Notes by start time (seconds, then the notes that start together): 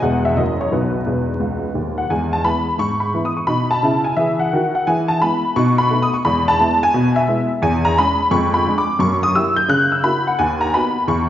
0.02 E1 E2 E3 G#3 B3 F#5
0.25 E5
0.36 F#1 F#2 E3 F#3 A#3 D#5
0.61 C#5
0.72 B1 B2 D#4 F#4 B4
1.06 E1 E2
1.40 C#2
1.74 D#1 D#2
1.98 F#5
2.10 E2 G#3 G#5
2.33 A5
2.45 E3 G#3 B3 B5
2.78 G#2 C#6
3.00 B5
3.14 E3 B3 E4
3.25 D#6
3.37 C#6
3.47 B2 D#4 B5
3.71 A5
3.83 C#3 E4
4.04 G#5
4.16 E3 G#4 E5
4.39 F#5
4.53 D#3 F#4
4.75 F#5
4.87 E3 G#4 G#5
5.08 A5
5.22 G#3 B3 E4 B5
5.56 B2 D#4 C#6
5.78 B5
5.91 A3 B3 D#4
6.02 D#6
6.14 C#6
6.25 E2 G#3 B5
6.48 A5
6.60 G#3 B3 E4
6.83 G#5
6.94 B2
7.16 E5
7.28 G#3 B3 E4
7.62 E2 G#5
7.85 A#5
7.98 G#3 C#4 G#4 B5
8.31 F2 G#3 C#6
8.54 B5
8.67 G#3 D4 G#4
8.78 D6
8.99 F#2 A#3 C#6
9.23 D#6
9.35 A#3 E4 G4 E6
9.56 G6
9.69 C#3 F#6
9.92 E6
10.03 A#3 E4 F#4 B5
10.27 F#5
10.39 D#2 G#5
10.61 A#5
10.74 B3 D#4 F#4 B5
11.08 E2 C#6